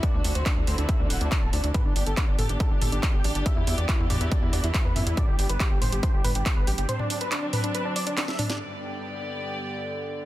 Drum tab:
HH |x-oxx-oxx-oxx-ox|x-oxx-oxx-oxx-ox|x-oxx-oxx-oxx-ox|x-oxx-oxx-oxx-ox|
CP |----x-------x---|----x-------x---|----x-------x---|----x-------x---|
SD |----------------|----------------|----------------|----------------|
T2 |----------------|o-----o---o-----|------o-------o-|o-----o---o-----|
BD |o---o---o---o---|o---o---o---o---|o---o---o---o---|o---o---o---o---|

HH |x-oxx-oxx-oxx-ox|----------------|
CP |----x-------x---|----------------|
SD |------------oo-o|----------------|
T2 |oo----o-------o-|----------------|
BD |----------------|----------------|